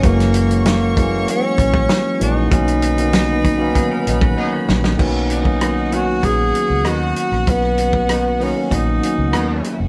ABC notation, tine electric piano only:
X:1
M:4/4
L:1/16
Q:1/4=97
K:B
V:1 name="Tine electric piano"
[E,F,G,A,B,C]4 z2 [E,F,G,=A,^A,C]6 z2 [E,F,G,A,C] z | [D,F,A,B,C]2 z [=D,^D,F,A,B,C]3 z [D,F,A,B,C]6 z3 | [D,F,A,B,C]2 z [D,F,A,B,C]2 z [D,F,A,B,C]6 z4 | z6 [D,F,A,B,D] [D,F,A,B,C]2 z [D,F,A,B,C]4 z2 |]